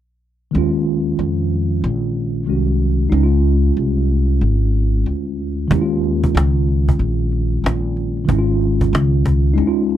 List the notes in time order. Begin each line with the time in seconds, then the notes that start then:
0.51 D#2 D#3 G#3
0.56 C#4 F4
1.19 F2
1.84 A#1
2.46 C2 D#3 G#3 C#4 F#4
3.10 C#2 G#3 D#4
3.14 C#4 D#4
3.23 F4
3.77 C2
4.41 G#1
5.06 D2
5.68 D#2 D#3 G#3, cajon bass
5.72 C#4 E4
5.82 F4
6.04 cajon slap
6.24 cajon bass, cajon slap
6.35 C#2, cajon slap
6.56 cajon slap
6.68 cajon slap
6.88 cajon bass
6.99 A#1, cajon slap
7.21 cajon slap
7.32 cajon slap
7.53 cajon slap
7.64 A#1, cajon slap
7.97 cajon slap
8.17 cajon slap
8.25 G#1 D#3 G#3, cajon bass
8.30 C#4 E4
8.38 F4
8.49 cajon slap
8.61 cajon slap
8.81 cajon bass
8.93 C#2, cajon slap
9.13 cajon slap
9.26 cajon bass
9.47 cajon slap
9.54 D#2 G#3 D#4, cajon slap
9.58 C#4 E4
9.67 F4
9.79 cajon slap
9.90 cajon slap